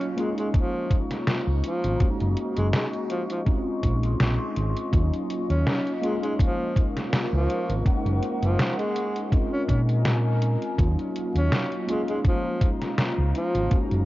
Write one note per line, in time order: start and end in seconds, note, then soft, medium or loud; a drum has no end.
0.00 0.16 F#3 medium
0.00 0.19 F#3 medium
0.00 0.10 A#3 medium
0.00 0.11 C#4 medium
0.00 0.11 D#4 medium
0.00 0.12 F4 medium
0.00 14.05 D#5 medium
0.00 0.16 F5 medium
0.00 0.16 C#6 medium
0.00 closed hi-hat soft
0.16 1.93 G#3 medium
0.16 0.30 G#3 medium
0.16 1.93 A#3 medium
0.16 1.94 C#4 medium
0.16 1.94 D#4 medium
0.16 1.98 F4 medium
0.16 1.94 F4 loud
0.16 3.43 A#5 medium
0.16 1.98 C#6 medium
0.16 closed hi-hat medium
0.38 0.48 G#3 medium
0.38 closed hi-hat medium
0.54 0.99 F3 medium
0.54 kick loud
0.54 closed hi-hat medium
0.91 kick loud
0.91 closed hi-hat medium
1.11 snare soft
1.11 closed hi-hat medium
1.27 snare loud
1.27 closed hi-hat medium
1.47 1.60 C#2 medium
1.63 2.08 F3 medium
1.63 closed hi-hat medium
1.84 1.97 G#1 medium
1.84 closed hi-hat medium
1.99 3.39 G#3 medium
1.99 3.40 A#3 medium
1.99 3.40 C#4 medium
1.99 3.40 D#4 medium
1.99 3.45 F#4 medium
1.99 3.41 F#4 medium
1.99 5.99 C#6 medium
1.99 muted fingered electric bass stroke soft
1.99 kick loud
1.99 closed hi-hat medium
2.20 2.34 F#1 medium
2.20 closed hi-hat soft
2.37 closed hi-hat medium
2.57 2.70 F#1 medium
2.57 2.68 G#3 medium
2.57 closed hi-hat medium
2.73 2.87 G#3 medium
2.73 snare loud
2.73 closed hi-hat medium
2.93 closed hi-hat soft
3.10 3.23 F3 medium
3.10 closed hi-hat medium
3.30 3.41 F3 medium
3.30 closed hi-hat medium
3.45 4.85 G#3 medium
3.45 4.86 C4 medium
3.45 4.86 C#4 medium
3.45 4.87 D#4 medium
3.45 4.87 F4 medium
3.45 4.91 G#4 medium
3.45 4.91 C6 medium
3.45 kick loud
3.45 closed hi-hat medium
3.83 4.13 A#1 medium
3.83 kick medium
3.83 closed hi-hat medium
4.03 closed hi-hat medium
4.20 4.36 A#1 loud
4.20 snare loud
4.20 closed hi-hat medium
4.56 4.72 G#1 medium
4.56 closed hi-hat medium
4.77 closed hi-hat medium
4.91 5.09 D#2 loud
4.91 5.95 F#3 medium
4.91 6.02 F#3 medium
4.91 5.96 A#3 medium
4.91 5.96 C#4 medium
4.91 5.96 D#4 medium
4.91 5.97 F4 medium
4.91 7.83 F5 medium
4.91 kick loud
4.91 closed hi-hat medium
5.14 closed hi-hat soft
5.30 closed hi-hat medium
5.49 5.63 D#2 medium
5.49 5.92 C#4 medium
5.49 closed hi-hat medium
5.66 snare loud
5.66 closed hi-hat medium
5.87 closed hi-hat soft
6.01 7.78 G#3 medium
6.01 6.16 G#3 medium
6.01 7.79 A#3 medium
6.01 7.79 C#4 medium
6.01 7.79 D#4 medium
6.01 7.80 F4 loud
6.01 9.29 A#4 medium
6.01 9.29 C#6 medium
6.01 closed hi-hat medium
6.22 6.33 G#3 medium
6.22 closed hi-hat medium
6.39 6.84 F3 medium
6.39 kick loud
6.39 closed hi-hat medium
6.76 kick loud
6.76 closed hi-hat medium
6.96 snare soft
6.96 closed hi-hat medium
7.12 snare loud
7.12 closed hi-hat medium
7.32 7.46 C#2 medium
7.32 7.75 F3 medium
7.50 closed hi-hat medium
7.69 7.82 G#1 medium
7.69 closed hi-hat soft
7.84 9.25 G#3 medium
7.84 9.25 A#3 medium
7.84 9.25 C#4 medium
7.84 9.26 D#4 medium
7.84 9.30 F#5 medium
7.84 9.26 F#5 medium
7.84 muted fingered electric bass stroke soft
7.84 kick loud
7.84 closed hi-hat medium
8.05 8.19 F#1 medium
8.05 closed hi-hat soft
8.23 closed hi-hat medium
8.42 8.56 F#1 medium
8.42 8.75 F3 medium
8.42 closed hi-hat medium
8.59 snare loud
8.59 closed hi-hat medium
8.78 9.22 G#3 medium
8.78 closed hi-hat soft
8.96 closed hi-hat medium
9.16 closed hi-hat soft
9.30 10.71 G#3 medium
9.30 10.71 C4 medium
9.30 10.72 C#4 medium
9.30 10.72 D#4 medium
9.30 10.72 F4 medium
9.30 10.77 A#4 medium
9.30 10.77 G#5 medium
9.30 kick loud
9.30 closed hi-hat medium
9.52 9.63 C#4 medium
9.68 10.55 A#2 medium
9.68 9.81 C#4 medium
9.68 kick medium
9.68 closed hi-hat medium
9.89 closed hi-hat medium
10.05 snare loud
10.05 closed hi-hat medium
10.42 closed hi-hat medium
10.62 closed hi-hat soft
10.77 10.94 D#2 medium
10.77 11.81 F#3 medium
10.77 11.87 F#3 medium
10.77 11.81 A#3 medium
10.77 11.82 C#4 medium
10.77 11.82 D#4 medium
10.77 11.82 F4 medium
10.77 11.88 F5 medium
10.77 kick loud
10.77 closed hi-hat medium
10.99 closed hi-hat soft
11.16 closed hi-hat medium
11.35 11.48 D#2 medium
11.35 11.78 C#4 medium
11.35 closed hi-hat soft
11.52 snare loud
11.52 closed hi-hat medium
11.72 closed hi-hat soft
11.87 13.64 G#3 medium
11.87 12.02 G#3 medium
11.87 13.64 A#3 medium
11.87 13.65 C#4 medium
11.87 13.65 D#4 medium
11.87 13.70 F4 medium
11.87 13.65 F4 loud
11.87 14.05 A#5 medium
11.87 closed hi-hat medium
12.08 12.19 G#3 medium
12.08 closed hi-hat soft
12.25 12.69 F3 medium
12.25 kick loud
12.25 closed hi-hat medium
12.61 kick loud
12.61 closed hi-hat medium
12.82 snare soft
12.82 closed hi-hat soft
12.98 snare loud
12.98 closed hi-hat medium
13.18 13.31 C#2 medium
13.34 13.79 F3 medium
13.34 closed hi-hat medium
13.55 13.68 G#1 medium
13.55 closed hi-hat soft
13.70 14.05 G#3 medium
13.70 14.05 A#3 medium
13.70 14.05 C#4 medium
13.70 14.05 D#4 medium
13.70 14.05 F#4 medium
13.70 muted fingered electric bass stroke soft
13.70 kick loud
13.70 closed hi-hat medium
13.91 14.05 F#1 medium
13.91 closed hi-hat soft